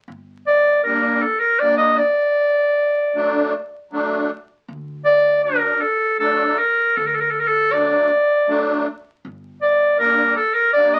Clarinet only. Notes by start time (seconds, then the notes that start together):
0.47 D5
0.84 A#4
1.22 A4
1.40 A#4
1.59 D5
1.78 D#5
1.98 D5
5.05 D5
5.44 A#4
5.81 A4
6.20 A4
6.58 A#4
6.97 A4
7.07 A#4
7.15 A4
7.21 A#4
7.31 A4
7.40 A#4
7.48 A4
7.73 D5
9.62 D5
9.99 A#4
10.36 A4
10.54 A#4
10.73 D5
10.94 D#5